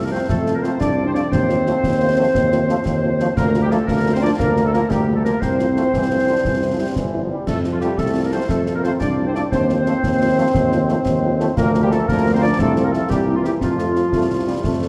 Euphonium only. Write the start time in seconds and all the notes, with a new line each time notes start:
0.04 A#3
0.12 C4
0.29 A3
0.56 A#3
0.63 C4
0.81 D4
1.07 C4
1.15 D4
1.32 C4
3.37 A#3
3.64 G3
3.71 A3
3.88 A#3
4.15 C4
4.22 D4
4.40 A#3
4.66 A3
4.74 A#3
4.91 G3
5.17 A3
5.24 A#3
5.42 C4
7.47 A3
7.74 F3
7.82 G3
7.99 A3
8.26 A#3
8.33 C4
8.50 A3
8.77 A#3
8.84 C4
9.01 D4
9.27 C4
9.35 D4
9.52 C4
11.57 A#3
11.84 G3
11.91 A3
12.08 A#3
12.35 C4
12.43 D4
12.60 A3
12.86 A#3
12.93 A3
13.11 G3
13.37 F3
13.44 G3
13.62 F3